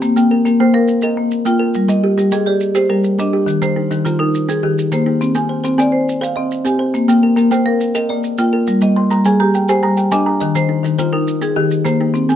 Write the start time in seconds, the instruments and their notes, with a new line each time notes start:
Already playing: marimba C6
0.02 marimba A#3, maracas
0.16 kalimba A#3, marimba G5, maracas
0.31 kalimba A#4
0.45 marimba A#3, kalimba A#4, maracas
0.60 kalimba A#3 G5, marimba C5
0.74 marimba A#4, kalimba F5
0.88 maracas
1.02 kalimba A#4, marimba D#5, maracas
1.17 marimba A#3
1.31 maracas
1.46 kalimba A#3, marimba F4 G5, maracas
1.59 kalimba A#4
1.74 marimba G3, maracas
1.88 kalimba G3, marimba D#5, maracas
2.04 kalimba G4
2.17 marimba G3, kalimba G4, maracas
2.32 kalimba G3 D#5, marimba G#4, maracas
2.46 marimba G4, kalimba D5
2.61 maracas
2.75 kalimba G4, marimba C5, maracas
2.90 marimba G3, kalimba A#4
3.04 maracas
3.19 kalimba G3, marimba D4 D#5, maracas
3.33 kalimba G4
3.46 marimba D#3, maracas
3.62 kalimba D#3, marimba C5, maracas
3.76 kalimba D#4
3.91 marimba D#3, kalimba D#4, maracas
4.05 kalimba D#3 C5, marimba F4, maracas
4.19 marimba D#4, kalimba A#4
4.34 maracas
4.49 kalimba D#4, marimba G#4, maracas
4.63 marimba D#3, kalimba G4
4.78 maracas
4.92 kalimba D#3, marimba A#3 C5, maracas
5.06 kalimba D#4
5.21 marimba C4, maracas
5.35 kalimba C4, marimba G#5, maracas
5.49 kalimba C5
5.64 marimba C4, kalimba C5, maracas
5.78 kalimba C4 G#5, marimba D5, maracas
5.92 marimba C5
6.09 maracas
6.21 kalimba C5, marimba F5, maracas
6.36 marimba C4, kalimba D#5
6.51 maracas
6.65 kalimba C4, marimba G4 G#5, maracas
6.79 kalimba C5
6.94 marimba A#3, maracas
7.08 kalimba A#3, marimba G5, maracas
7.23 kalimba A#4
7.36 marimba A#3, kalimba A#4, maracas
7.51 kalimba A#3 G5, marimba C5, maracas
7.66 marimba A#4, kalimba F5
7.80 maracas
7.95 kalimba A#4, marimba D#5, maracas
8.09 marimba A#3, kalimba D5
8.24 maracas
8.38 kalimba A#3, marimba F4 G5, maracas
8.53 kalimba A#4
8.67 marimba G3, maracas
8.81 kalimba G3, marimba D#5, maracas
8.96 kalimba C6
9.10 marimba G3, kalimba A#5, maracas
9.25 kalimba G3 G#5, marimba G#4, maracas
9.40 marimba G4, kalimba A#5
9.54 kalimba G5, maracas
9.69 kalimba G4 G#5, marimba C5, maracas
9.83 marimba G3, kalimba A#5
9.97 kalimba G5, maracas
10.12 kalimba G3 G#5, marimba D4 D#5, maracas
10.26 kalimba A#5
10.40 marimba D#3, kalimba D#5, maracas
10.55 kalimba D#3, marimba C5, maracas
10.69 kalimba D#4
10.83 marimba D#3, kalimba D#4, maracas
10.98 kalimba D#3 C5, marimba F4, maracas
11.13 marimba D#4, kalimba A#4
11.28 maracas
11.42 kalimba D#4, marimba G#4, maracas
11.56 marimba D#3, kalimba G4
11.71 maracas
11.85 kalimba D#3, marimba A#3 C5, maracas
12.01 kalimba D#4
12.14 marimba C4, maracas
12.29 kalimba C4, marimba G#5, maracas